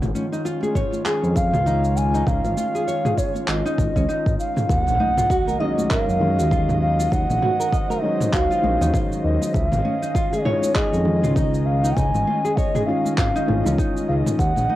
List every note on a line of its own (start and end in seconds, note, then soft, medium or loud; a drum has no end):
0.00 0.12 G#1 medium
0.00 4.65 D#3 medium
0.00 4.65 G#3 medium
0.00 4.65 C#4 medium
0.00 4.65 F4 medium
0.00 mid tom medium
0.00 muted conga medium
0.00 cabasa soft
0.15 0.25 C#4 medium
0.15 high conga medium
0.15 cabasa medium
0.32 0.44 D#4 medium
0.32 cabasa soft
0.45 0.61 F4 medium
0.45 cabasa soft
0.63 0.75 G#4 medium
0.63 high conga medium
0.63 cabasa soft
0.75 1.04 C#5 loud
0.75 kick medium
0.75 mid tom medium
0.75 cabasa medium
0.93 muted conga medium
0.93 high conga medium
0.93 cabasa soft
1.05 1.52 G#4 loud
1.05 clap medium
1.05 cabasa soft
1.23 1.55 F2 medium
1.23 cabasa soft
1.36 1.98 F5 loud
1.36 kick medium
1.36 low conga medium
1.36 cabasa medium
1.53 2.23 C#2 medium
1.53 1.66 F4 medium
1.53 mid tom medium
1.53 cabasa soft
1.66 2.12 D#4 loud
1.66 low conga medium
1.66 cabasa soft
1.85 cabasa soft
1.97 2.29 G#5 loud
1.97 cabasa medium
2.14 2.21 D#4 medium
2.14 cabasa soft
2.27 2.41 C#2 loud
2.27 2.56 D#4 medium
2.27 3.20 F5 loud
2.27 kick loud
2.27 mid tom medium
2.27 cabasa soft
2.44 2.55 G#1 medium
2.44 muted conga medium
2.44 low conga medium
2.44 cabasa soft
2.57 2.67 F4 medium
2.57 high conga medium
2.57 cabasa medium
2.75 2.82 G#4 medium
2.75 cabasa soft
2.87 3.03 C#5 medium
2.87 cabasa soft
3.05 3.12 G#4 medium
3.05 mid tom medium
3.05 high conga medium
3.05 cabasa soft
3.18 3.48 C#5 medium
3.18 kick medium
3.18 cabasa medium
3.35 muted conga medium
3.35 high conga medium
3.35 cabasa soft
3.48 3.62 G#1 medium
3.48 3.64 F4 medium
3.48 4.35 D#5 medium
3.48 clap medium
3.48 cabasa soft
3.66 3.94 D#4 loud
3.66 cabasa soft
3.78 3.92 G#1 medium
3.78 kick loud
3.78 mid tom medium
3.78 muted conga medium
3.78 high conga medium
3.78 cabasa medium
3.96 4.06 C#2 medium
3.96 4.03 C#4 medium
3.96 kick medium
3.96 low conga medium
3.96 cabasa soft
4.09 4.68 D#4 loud
4.09 cabasa soft
4.26 4.36 G#1 medium
4.26 kick medium
4.26 high conga soft
4.26 cabasa soft
4.39 4.71 F5 medium
4.39 cabasa medium
4.56 mid tom medium
4.56 muted conga medium
4.56 cabasa soft
4.69 4.83 D#2 loud
4.69 14.76 D#3 medium
4.69 9.50 F#3 medium
4.69 7.09 A#3 medium
4.69 9.50 D#5 medium
4.69 5.62 F#5 loud
4.69 kick loud
4.69 impact medium
4.69 cabasa medium
4.87 4.97 A#1 medium
4.87 muted conga medium
4.87 cabasa soft
5.00 5.10 D#4 medium
5.00 high conga medium
5.17 5.29 F4 medium
5.17 mid tom medium
5.17 cabasa medium
5.30 5.46 F#4 loud
5.30 kick loud
5.30 cabasa medium
5.47 5.60 A#4 medium
5.47 high conga medium
5.47 cabasa soft
5.59 6.17 D#3 medium
5.59 6.18 F#3 medium
5.59 6.18 G#3 medium
5.59 6.18 C#4 medium
5.59 5.89 D#5 loud
5.59 5.92 D#5 medium
5.78 muted conga medium
5.78 high conga medium
5.78 cabasa medium
5.90 6.37 A#4 loud
5.90 6.81 F5 loud
5.90 kick loud
5.90 clap medium
5.90 mid tom medium
5.90 cabasa medium
6.08 6.40 F#2 medium
6.08 cabasa soft
6.19 7.99 D#3 medium
6.19 8.01 F#3 medium
6.19 7.99 G#3 medium
6.19 8.00 C#4 medium
6.19 low conga medium
6.38 7.08 D#2 medium
6.38 6.51 F#4 medium
6.38 cabasa medium
6.51 6.97 F4 medium
6.51 kick loud
6.51 low conga medium
6.51 cabasa medium
6.69 mid tom medium
6.69 cabasa soft
6.81 7.13 F5 loud
6.99 7.06 F4 medium
6.99 cabasa medium
7.12 7.26 D#2 loud
7.12 7.41 F4 medium
7.12 9.52 C5 medium
7.12 8.04 F#5 loud
7.12 kick loud
7.12 cabasa medium
7.30 7.40 A#1 loud
7.30 muted conga medium
7.30 low conga medium
7.30 cabasa soft
7.42 7.52 F#4 medium
7.42 mid tom medium
7.42 high conga medium
7.60 7.67 A#4 medium
7.60 cabasa medium
7.72 7.88 D#5 medium
7.72 kick loud
7.72 cabasa medium
7.90 7.97 A#4 medium
7.90 high conga medium
7.90 cabasa soft
8.02 8.60 D#3 medium
8.02 8.61 F#3 medium
8.02 8.60 G#3 medium
8.02 8.60 C#4 medium
8.02 8.35 D#5 medium
8.20 mid tom medium
8.20 muted conga soft
8.20 high conga medium
8.20 cabasa medium
8.33 8.47 C#2 medium
8.33 8.49 F#4 medium
8.33 8.98 F5 loud
8.33 kick loud
8.33 clap medium
8.33 cabasa medium
8.51 8.79 F4 loud
8.51 cabasa soft
8.62 8.77 A#1 medium
8.62 9.52 D#3 medium
8.62 9.53 G#3 medium
8.62 9.53 C#4 medium
8.62 muted conga medium
8.62 high conga medium
8.66 9.54 F#3 medium
8.81 8.91 D#2 medium
8.81 8.88 D#4 medium
8.81 low conga loud
8.81 cabasa medium
8.94 9.53 F4 loud
8.94 kick loud
8.94 mid tom medium
8.94 cabasa medium
9.12 high conga soft
9.12 cabasa soft
9.24 9.38 D#2 medium
9.24 9.56 D#5 medium
9.42 muted conga medium
9.42 cabasa medium
9.54 9.68 C#2 loud
9.54 14.35 G#3 medium
9.54 14.35 C#4 medium
9.54 14.76 D#5 medium
9.54 9.69 E5 loud
9.54 kick loud
9.54 cabasa medium
9.69 9.82 G#1 loud
9.69 10.46 F5 loud
9.69 mid tom medium
9.69 muted conga medium
9.69 cabasa soft
9.85 9.95 C#4 medium
9.85 high conga medium
10.02 10.14 D#4 medium
10.02 cabasa medium
10.15 10.31 F4 loud
10.15 kick loud
10.15 cabasa medium
10.33 10.45 G#4 medium
10.33 high conga medium
10.33 cabasa soft
10.44 11.02 D#3 medium
10.44 11.03 G#3 medium
10.44 11.03 C#4 medium
10.44 11.03 F4 medium
10.44 10.77 C#5 medium
10.44 10.74 C#5 loud
10.44 mid tom medium
10.62 muted conga soft
10.62 high conga medium
10.62 cabasa medium
10.75 11.22 G#4 loud
10.75 11.67 D#5 loud
10.75 kick loud
10.75 clap medium
10.75 cabasa medium
10.93 11.25 F2 medium
10.93 cabasa soft
11.04 12.84 D#3 medium
11.04 12.84 G#3 medium
11.04 12.85 C#4 medium
11.04 12.85 F4 medium
11.04 low conga medium
11.23 11.92 C#2 medium
11.23 11.36 F4 medium
11.23 mid tom medium
11.23 cabasa medium
11.36 11.82 D#4 loud
11.36 kick loud
11.36 low conga medium
11.36 cabasa medium
11.54 cabasa soft
11.66 11.98 F5 loud
11.84 11.91 D#4 medium
11.84 cabasa medium
11.96 12.11 C#2 loud
11.96 12.26 D#4 medium
11.96 12.58 G#5 loud
11.96 kick loud
11.96 mid tom medium
11.96 cabasa medium
12.14 12.24 G#1 loud
12.14 muted conga medium
12.14 low conga medium
12.14 cabasa soft
12.27 12.37 F4 medium
12.27 high conga medium
12.45 12.52 G#4 medium
12.45 cabasa medium
12.57 12.73 C#5 medium
12.57 12.88 D#5 loud
12.57 kick loud
12.57 cabasa medium
12.75 12.82 G#4 medium
12.75 mid tom medium
12.75 high conga medium
12.75 cabasa soft
12.86 13.45 D#3 medium
12.86 13.45 G#3 medium
12.86 13.45 C#4 medium
12.86 13.46 F4 medium
12.86 13.17 F5 loud
13.05 muted conga medium
13.05 high conga medium
13.05 cabasa medium
13.17 13.32 G#1 medium
13.17 13.34 F4 medium
13.17 13.78 F5 loud
13.17 kick loud
13.17 clap medium
13.17 cabasa medium
13.36 13.64 D#4 loud
13.36 cabasa soft
13.47 13.62 G#1 medium
13.47 13.61 D#3 medium
13.47 13.61 G#3 medium
13.47 13.62 C#4 medium
13.47 13.62 F4 medium
13.47 mid tom medium
13.47 muted conga medium
13.47 high conga medium
13.64 13.76 C#2 medium
13.64 14.37 D#3 loud
13.64 14.37 G#3 medium
13.64 13.73 C#4 medium
13.64 14.38 C#4 medium
13.64 14.38 F4 loud
13.64 low conga medium
13.64 cabasa medium
13.78 14.38 D#4 loud
13.78 kick loud
13.78 cabasa medium
13.97 high conga soft
13.97 cabasa soft
14.08 14.23 C#2 medium
14.08 14.15 F5 medium
14.26 mid tom medium
14.26 muted conga medium
14.26 cabasa medium
14.38 14.53 D#2 loud
14.38 14.76 F#3 medium
14.38 14.76 A#3 medium
14.38 14.76 F#5 loud
14.38 kick loud
14.38 cabasa medium
14.56 14.67 A#1 medium
14.56 muted conga medium
14.56 cabasa soft
14.69 14.76 D#4 medium
14.69 high conga medium